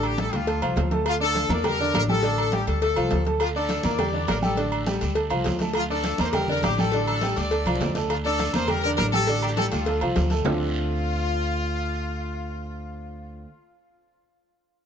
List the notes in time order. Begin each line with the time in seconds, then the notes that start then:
Already playing: A1 D3 D4 D5
0.03 G4, high conga, low agogo
0.18 G3 G4 A4 G5, cowbell, high conga, low timbale
0.33 D2 F4, cowbell, high conga, low agogo
0.47 A3 A4 A5, cowbell, high conga, low agogo
0.62 C2 F3 F4 F5, cowbell, high conga, low agogo
0.76 D2, cowbell, high conga, low timbale, low agogo
0.91 A3 A4 A5, cowbell, high conga
1.06 F4, cowbell, high conga, low agogo
1.20 D4 A4 D5 D6, high conga
1.35 cowbell, high conga, low timbale, low agogo
1.49 E2 A#3 A#4 D5 A#5, high conga, low agogo
1.64 G3 G4 A#4 G5, cowbell, high conga, low conga, low agogo
1.79 D3 D4 D5, high conga
1.94 A1 A#4, cowbell, high conga, low timbale, low agogo
2.08 G3 G4 A4 G5, high conga
2.23 D3 D4 D5, cowbell, high conga, low agogo
2.38 A4, high conga, low agogo
2.52 G3 G4 G5, cowbell, high conga, low timbale
2.67 D2 A4, cowbell, high conga, low agogo
2.82 A3 A4 A5, cowbell, high conga, low agogo
2.96 C2 F3 F4 F5, cowbell, high conga, low agogo
3.10 D2, cowbell, high conga, low timbale, low agogo
3.25 A3 A4 A5, cowbell, high conga
3.40 F4, cowbell, high conga, low agogo, long guiro
3.55 D4 A4 D5 D6, high conga
3.69 cowbell, high conga, low timbale, low agogo, short guiro
3.83 E2 A#3 A#4 D5 A#5, high conga, low agogo, short guiro
3.99 G3 G4 G5, cowbell, high conga, low conga, low agogo, long guiro
4.13 D3 D4 D5, high conga
4.28 A1 A#4, cowbell, high conga, low timbale, low agogo, short guiro
4.42 G3 G4 A4 G5, high conga, short guiro
4.57 D3 D4 D5, cowbell, high conga, low agogo, long guiro
4.72 high conga, low agogo
4.86 G3 G4 G5, cowbell, high conga, low timbale, short guiro
5.01 D2, cowbell, high conga, low agogo, short guiro
5.15 A3 A4 A5, cowbell, high conga, low agogo, long guiro
5.30 C2 F3 F4 F5, cowbell, high conga, low agogo
5.44 D2, cowbell, high conga, low timbale, low agogo, short guiro
5.59 A3 A4 A5, cowbell, high conga, short guiro
5.73 F4, cowbell, high conga, low agogo, long guiro
5.89 D4 A4 D5 D6, high conga
6.03 cowbell, high conga, low timbale, low agogo, short guiro
6.18 E2 A#3 A#4 C5 A#5, high conga, low agogo, short guiro
6.33 G3 G4 A#4 G5, cowbell, high conga, low conga, low agogo, long guiro
6.48 D3 D4 A#4 D5, high conga, low conga
6.62 A1 G4, cowbell, high conga, low timbale, low agogo, short guiro
6.78 G3 G4 A4 G5, high conga, short guiro
6.92 D3 D4 D5, cowbell, high conga, low agogo, long guiro
7.07 A4, high conga, low agogo
7.21 G3 G4 G5, cowbell, high conga, low timbale, short guiro
7.36 D2 D5, cowbell, high conga, low agogo, short guiro
7.51 A3 A4 A5, cowbell, high conga, low agogo, long guiro
7.66 C2 F3 F4 F5, cowbell, high conga, low agogo
7.75 high conga
7.80 D2, cowbell, low timbale, low agogo, short guiro
7.86 low conga
7.95 A3 A4 A5, cowbell, low conga, short guiro
8.10 F4, cowbell, high conga, low agogo, long guiro
8.25 D4 A4 D5 D6, high conga
8.39 cowbell, high conga, low timbale, low agogo, short guiro
8.53 E2 A#3 A#4 C5 A#5, high conga, low agogo, short guiro
8.68 G3 G4 A#4 G5, cowbell, high conga, low conga, low agogo, long guiro
8.83 D3 D4 A#4 D5, high conga
8.98 A1 A#4, cowbell, high conga, low timbale, low agogo, short guiro
9.13 G3 G4 A4 G5, high conga, short guiro
9.27 D3 D4 D5, cowbell, high conga, low agogo, long guiro
9.42 G4, high conga, low agogo
9.57 G3 G4 A4 G5, cowbell, high conga, low timbale, short guiro
9.72 D2 F4, cowbell, high conga, low agogo, short guiro
9.86 A3 A4 A5, cowbell, high conga, low agogo, long guiro
10.01 C2 F3 F4 F5, cowbell, high conga, low agogo
10.15 D2, cowbell, high conga, low timbale, low agogo, short guiro
10.30 A3 A4 A5, cowbell, high conga, short guiro
10.45 D2 D3 A3 C4 D4 F4 A4, low bongo, low conga, low timbale, long guiro